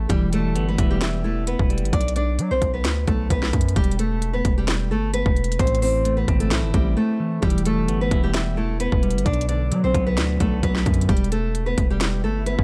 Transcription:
0.09 E1 E3 G3 G4, kick, closed hi-hat
0.33 G3 A3 A4, closed hi-hat
0.56 G1 B3, closed hi-hat
0.68 B3 B4
0.78 E1 E4, kick, closed hi-hat
0.91 G3 G4
1.01 E5, finger snap, snare, closed hi-hat
1.24 A3 E4 A4
1.47 B3 B4, closed hi-hat
1.59 E1, kick
1.70 G3, closed hi-hat
1.78 closed hi-hat
1.82 G1, closed hi-hat
1.93 B1 D4 D5, kick, closed hi-hat
2.01 closed hi-hat
2.08 closed hi-hat
2.16 D4 D5, closed hi-hat
2.39 F#3, closed hi-hat
2.51 B1 C4 C5
2.62 B1, kick, closed hi-hat
2.74 B3 B4
2.85 D2, finger snap, snare, closed hi-hat
3.07 B1 A3 A4, kick, closed hi-hat
3.30 B1 B3 B4, kick, closed hi-hat
3.43 snare
3.53 F#2, kick, closed hi-hat
3.61 closed hi-hat
3.69 closed hi-hat
3.76 E1 G3 G4, kick, closed hi-hat
3.84 closed hi-hat
3.91 closed hi-hat
3.99 A3 A4, closed hi-hat
4.22 closed hi-hat
4.33 B3 B4
4.45 E1, kick, closed hi-hat
4.58 G3 G4
4.68 finger snap, snare, closed hi-hat
4.91 G1 A3 A4
5.14 B3 B4, closed hi-hat
5.26 E1, kick
5.36 closed hi-hat
5.44 closed hi-hat
5.52 closed hi-hat
5.59 A1 A2 C4 C5, kick, closed hi-hat
5.67 closed hi-hat
5.75 closed hi-hat
5.82 E3 C4 C5, open hi-hat
6.05 A3, closed hi-hat
6.17 B3 B4
6.28 G1 C4, kick, closed hi-hat
6.40 A3 A4, closed hi-hat
6.51 B1 E4, finger snap, snare, closed hi-hat
6.63 G1
6.74 A1 G3 C4 G4, kick, closed hi-hat
6.97 A3 A4
7.20 E3
7.42 E1 E3 G3 G4, kick, closed hi-hat
7.50 closed hi-hat
7.58 closed hi-hat
7.66 G3 A3 A4, closed hi-hat
7.88 G1 B3, closed hi-hat
8.01 B3 B4
8.11 E1 E4, kick, closed hi-hat
8.23 G3 G4
8.34 E5, finger snap, snare, closed hi-hat
8.57 A3 E4 A4
8.80 B3 B4, closed hi-hat
8.92 E1, kick
9.03 G3, closed hi-hat
9.11 closed hi-hat
9.15 G1, closed hi-hat
9.26 B1 B2 D4 D5, kick, closed hi-hat
9.33 closed hi-hat
9.41 closed hi-hat
9.49 D3 D4 D5, closed hi-hat
9.72 F#3, closed hi-hat
9.84 B1 C4 C5
9.94 B1 B3, kick, closed hi-hat
10.07 B3 B4
10.17 D2 D4, finger snap, snare, closed hi-hat
10.40 B1 A3 B3 A4, kick, closed hi-hat
10.63 B1 F#3 B3 B4, kick, closed hi-hat
10.75 snare
10.86 F#2 D3, kick, closed hi-hat
10.94 closed hi-hat
11.01 closed hi-hat
11.09 E1 G3 G4, kick, closed hi-hat, swell
11.17 closed hi-hat
11.24 closed hi-hat
11.32 A3 A4, closed hi-hat
11.55 closed hi-hat
11.66 B3 B4
11.78 E1, kick, closed hi-hat
11.90 G3 G4
12.01 finger snap, snare, closed hi-hat
12.24 G1 A3 A4
12.46 B3 B4, closed hi-hat
12.59 E1, kick

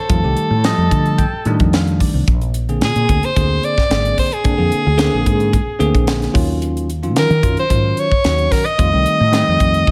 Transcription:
Already playing: A4
0.09 F2 D#3 G3 A3 F4, kick, closed hi-hat
0.23 C2 D#3 G3 A3 G4
0.36 muted fretless electric bass stroke, closed hi-hat
0.50 A2
0.64 F3 G3 A3 D#5, snare, closed hi-hat
0.78 F2
0.91 D3 A5, kick, closed hi-hat
1.06 closed hi-hat
1.18 G5, kick, closed hi-hat
1.33 muted fretless electric bass stroke
1.45 A2 D#3 G3 A3 D4 D#5, closed hi-hat
1.60 F2, kick, closed hi-hat
1.73 F5, snare, closed hi-hat
1.88 closed hi-hat
2.00 D5, kick, open hi-hat
2.14 C2
2.27 A#1, kick, closed hi-hat
2.42 closed hi-hat
2.54 closed hi-hat
2.69 D3 A#3 C4 G#4, closed hi-hat
2.81 A#2 G#4, snare, closed hi-hat
2.96 A#2, closed hi-hat
3.09 D2 D3 A#3 C4 G#4, kick, closed hi-hat
3.23 C5, closed hi-hat
3.36 D2 D3 A#3 C4 G#4, kick, closed hi-hat
3.63 D5, closed hi-hat
3.78 kick, snare
3.89 G#1 D3 A#3 C4 G#4, snare, closed hi-hat
4.05 closed hi-hat
4.18 C5, kick, open hi-hat
4.32 G#4, closed hi-hat
4.44 D3 A#3 C4 D4, kick, closed hi-hat
4.57 F2 D3 A#3 C4 G#4
4.72 muted fretless electric bass stroke, closed hi-hat
4.86 D2
4.97 D3 A#3 C4 G#4, snare, closed hi-hat
5.14 A#1
5.26 G#2, kick, closed hi-hat
5.40 closed hi-hat
5.53 kick, closed hi-hat
5.67 muted fretless electric bass stroke
5.79 D2 D3 A#3 C4 G#4, closed hi-hat
5.94 A#1, kick, closed hi-hat
6.07 snare, closed hi-hat
6.22 snare, closed hi-hat
6.33 D#2 D#3 F#3 C#4 F4, kick, open hi-hat
6.62 closed hi-hat
6.77 closed hi-hat
6.90 closed hi-hat
7.03 D#3 F#3 C#4 F4, closed hi-hat
7.16 D#3 A#4, snare, closed hi-hat
7.30 D#3, closed hi-hat
7.42 F#2 D#3 F#3 C#4 F4, kick, closed hi-hat
7.57 C5, closed hi-hat
7.69 G#2 D#3 F#3 C#4 F4, kick, closed hi-hat
7.97 C#5, closed hi-hat
8.12 kick
8.24 D#2 D#3 F#3 C#4 F#4, snare, closed hi-hat
8.38 closed hi-hat
8.52 A#4, kick, snare, open hi-hat
8.65 D#5, closed hi-hat
8.78 F2 D#3 G3 A3 F4, kick, closed hi-hat
8.93 C2 D#3 G3 A3 C4
9.06 closed hi-hat
9.20 A2
9.32 D#3 G3 A3 C4, snare, closed hi-hat
9.48 F2
9.60 F2, kick, closed hi-hat
9.74 closed hi-hat
9.87 D#2, kick

